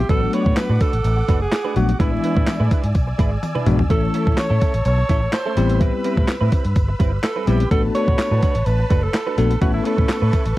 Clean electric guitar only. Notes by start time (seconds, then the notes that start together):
0.09 A3 D4 F#4 B4
0.22 muted clean electric guitar stroke
0.33 A3 D4 F#4 B4
0.46 A3 D4 F#4 B4
0.69 A3 D4 F#4 B4
0.81 A3 D4 F#4 B4
0.93 muted clean electric guitar stroke
1.17 muted clean electric guitar stroke
1.28 A3 D4 F#4 B4
1.41 muted clean electric guitar stroke
1.64 A3 D4 F#4 B4
1.76 muted clean electric guitar stroke
1.88 muted clean electric guitar stroke
1.99 G#3 D4 E4 B4
2.12 muted clean electric guitar stroke
2.23 G#3 D4 E4 B4
2.36 G#3 D4 E4 B4
2.47 muted clean electric guitar stroke
2.60 G#3 D4 E4 B4
2.71 G#3 D4 E4 B4
2.83 muted clean electric guitar stroke
3.07 muted clean electric guitar stroke
3.18 G#3 D4 E4 B4
3.31 muted clean electric guitar stroke
3.42 muted clean electric guitar stroke
3.55 G#3 D4 E4 B4
3.66 G#3 D4 E4 B4
3.79 muted clean electric guitar stroke
3.90 A3 C#4 E4 A4
4.03 muted clean electric guitar stroke
4.14 A3 C#4 E4 A4
4.27 A3 C#4 E4 A4
4.50 A3 C#4 E4 A4
4.61 A3 C#4 E4 A4
4.74 muted clean electric guitar stroke
4.98 muted clean electric guitar stroke
5.09 A3 C#4 E4 A4
5.22 muted clean electric guitar stroke
5.33 muted clean electric guitar stroke
5.46 A3 C#4 E4 A4
5.57 muted clean electric guitar stroke
5.69 muted clean electric guitar stroke
5.81 G3 C4 E4 B4
5.93 muted clean electric guitar stroke
6.04 G3 C4 E4 B4
6.17 G3 C4 E4 B4
6.28 muted clean electric guitar stroke
6.41 G3 C4 E4 B4
6.52 G3 C4 E4 B4
6.65 muted clean electric guitar stroke
6.88 muted clean electric guitar stroke
6.99 G3 C4 E4 B4
7.12 muted clean electric guitar stroke
7.23 muted clean electric guitar stroke
7.36 G3 C4 E4 B4
7.47 G3 C4 E4 B4
7.60 muted clean electric guitar stroke
7.71 A3 D4 F#4 B4
7.84 muted clean electric guitar stroke
7.95 A3 D4 F#4 B4
8.07 A3 D4 F#4 B4
8.19 muted clean electric guitar stroke
8.31 A3 D4 F#4 B4
8.42 A3 D4 F#4 B4
8.55 muted clean electric guitar stroke
8.79 muted clean electric guitar stroke
8.90 A3 D4 F#4 B4
9.03 muted clean electric guitar stroke
9.14 muted clean electric guitar stroke
9.26 A3 D4 F#4 B4
9.38 muted clean electric guitar stroke
9.50 muted clean electric guitar stroke
9.61 A3 C#4 E4 B4
9.74 muted clean electric guitar stroke
9.85 A3 C#4 E4 B4
9.98 A3 C#4 E4 B4
10.22 A3 C#4 E4 B4
10.33 A3 C#4 E4 B4
10.46 muted clean electric guitar stroke